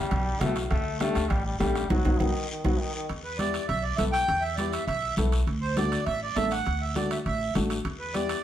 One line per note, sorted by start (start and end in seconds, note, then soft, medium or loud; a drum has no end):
0.00 0.42 G3 medium
0.11 0.35 B1 loud
0.11 bombo low medium
0.11 bombo rim medium
0.11 high conga soft
0.11 high timbale medium
0.11 long guiro medium
0.40 0.65 B1 loud
0.40 0.56 A3 loud
0.40 0.62 B3 medium
0.40 0.62 E4 medium
0.40 0.62 F#4 medium
0.40 bombo rim medium
0.40 high conga medium
0.40 low conga medium
0.40 high timbale medium
0.40 low timbale medium
0.40 short guiro medium
0.56 bombo rim medium
0.56 high timbale medium
0.56 short guiro medium
0.71 1.07 D2 medium
0.71 0.99 A3 loud
0.71 bombo low medium
0.71 bombo rim medium
0.71 high conga soft
0.71 high timbale medium
0.71 long guiro medium
1.00 1.21 A3 medium
1.00 1.32 A3 loud
1.00 1.22 D4 medium
1.00 1.22 G4 medium
1.00 bombo rim medium
1.00 high conga medium
1.00 high timbale medium
1.00 short guiro medium
1.15 1.28 D2 medium
1.15 bombo rim medium
1.15 high timbale medium
1.15 short guiro medium
1.30 1.54 A1 loud
1.30 1.45 G3 medium
1.30 bombo low medium
1.30 bombo rim medium
1.30 high conga soft
1.30 high timbale medium
1.30 long guiro medium
1.46 1.59 G3 medium
1.60 1.84 A1 loud
1.60 1.93 G3 medium
1.60 1.81 A3 medium
1.60 1.81 D4 medium
1.60 1.81 G4 medium
1.60 bombo low medium
1.60 bombo rim medium
1.60 high conga medium
1.60 high timbale medium
1.60 low timbale medium
1.60 short guiro medium
1.75 bombo rim medium
1.75 high timbale medium
1.75 short guiro medium
1.90 2.02 B1 medium
1.90 2.22 F#3 medium
1.90 2.00 B3 medium
1.90 2.00 D#4 loud
1.90 2.00 F#4 medium
1.90 bombo low loud
1.90 high conga loud
1.90 high timbale medium
1.90 long guiro medium
2.05 2.16 B1 medium
2.05 2.15 B3 medium
2.05 2.15 D#4 loud
2.05 2.15 F#4 medium
2.05 bombo low loud
2.05 high conga loud
2.05 high timbale loud
2.05 long guiro medium
2.20 2.31 B1 medium
2.20 2.50 D#3 medium
2.20 2.30 B3 medium
2.20 2.30 D#4 medium
2.20 2.30 F#4 medium
2.20 bombo low medium
2.20 high conga medium
2.20 high timbale medium
2.20 long guiro loud
2.51 2.67 D#3 medium
2.64 2.76 B1 medium
2.64 2.81 F#3 medium
2.64 2.75 B3 medium
2.64 2.75 D#4 medium
2.64 2.75 F#4 medium
2.64 bombo low loud
2.64 high conga medium
2.64 high timbale medium
2.64 long guiro loud
2.80 2.95 D#3 medium
2.95 3.09 D#3 medium
3.09 3.57 E2 medium
3.09 high conga soft
3.09 high timbale medium
3.09 long guiro medium
3.24 3.38 B4 medium
3.38 3.60 B3 medium
3.38 3.60 E4 medium
3.38 3.60 G4 medium
3.38 3.66 D5 medium
3.38 high conga medium
3.38 high timbale medium
3.38 short guiro medium
3.54 high timbale medium
3.54 short guiro medium
3.68 3.93 B1 medium
3.68 3.84 E5 loud
3.68 high conga soft
3.68 high timbale medium
3.68 long guiro medium
3.83 3.97 D5 medium
3.97 4.22 B1 medium
3.97 4.19 B3 medium
3.97 4.19 E4 medium
3.97 4.19 A4 medium
3.97 4.04 E5 loud
3.97 high conga medium
3.97 high timbale medium
3.97 short guiro medium
4.12 4.43 G5 loud
4.12 high timbale medium
4.12 short guiro medium
4.28 4.76 E2 medium
4.28 high conga soft
4.28 high timbale medium
4.28 long guiro medium
4.41 4.56 E5 medium
4.56 4.79 B3 medium
4.56 4.79 E4 medium
4.56 4.79 G4 medium
4.56 4.72 D5 medium
4.56 high conga medium
4.56 high timbale medium
4.56 short guiro medium
4.71 4.85 E5 medium
4.71 high timbale medium
4.71 short guiro medium
4.86 5.11 B1 medium
4.86 5.15 E5 medium
4.86 high conga soft
4.86 high timbale medium
4.86 long guiro medium
5.17 5.41 B1 medium
5.17 5.38 B3 medium
5.17 5.39 E4 medium
5.17 5.39 A4 medium
5.17 high conga medium
5.17 high timbale medium
5.17 short guiro medium
5.32 high timbale medium
5.32 short guiro medium
5.47 5.95 D2 medium
5.47 high conga soft
5.47 high timbale medium
5.47 long guiro medium
5.61 5.75 C5 medium
5.77 5.98 A3 medium
5.77 5.98 D4 medium
5.77 5.98 F#4 medium
5.77 6.04 D5 medium
5.77 high conga medium
5.77 high timbale medium
5.77 short guiro medium
5.92 high timbale medium
5.92 short guiro medium
6.06 6.31 A1 medium
6.06 6.20 E5 loud
6.06 high conga soft
6.06 high timbale medium
6.06 long guiro medium
6.23 6.37 D5 medium
6.36 6.60 A1 medium
6.36 6.57 A3 medium
6.36 6.57 D4 medium
6.36 6.57 A4 medium
6.36 6.52 E5 loud
6.36 high conga medium
6.36 high timbale medium
6.36 low timbale medium
6.36 short guiro medium
6.51 6.82 F#5 medium
6.51 high timbale medium
6.51 short guiro medium
6.66 7.14 D2 medium
6.66 high conga soft
6.66 high timbale medium
6.66 long guiro medium
6.81 6.95 E5 medium
6.95 7.16 A3 medium
6.95 7.17 D4 medium
6.95 7.17 F#4 medium
6.95 7.12 D5 medium
6.95 high conga medium
6.95 high timbale medium
6.95 short guiro medium
7.11 7.18 E5 medium
7.11 high timbale medium
7.11 short guiro medium
7.26 7.50 A1 medium
7.26 7.54 E5 medium
7.26 high conga soft
7.26 high timbale medium
7.26 long guiro medium
7.55 7.79 A1 medium
7.55 7.76 A3 medium
7.55 7.76 D4 medium
7.55 7.76 F#4 medium
7.55 high conga medium
7.55 high timbale medium
7.55 short guiro medium
7.70 high timbale medium
7.70 short guiro medium
7.85 8.33 E2 medium
7.85 high conga soft
7.85 high timbale medium
7.85 long guiro medium
7.99 8.15 B4 medium
8.14 8.35 B3 medium
8.14 8.35 E4 medium
8.14 8.35 G4 medium
8.14 8.44 D5 medium
8.14 high conga medium
8.14 high timbale medium
8.14 short guiro medium
8.29 high timbale medium
8.29 short guiro medium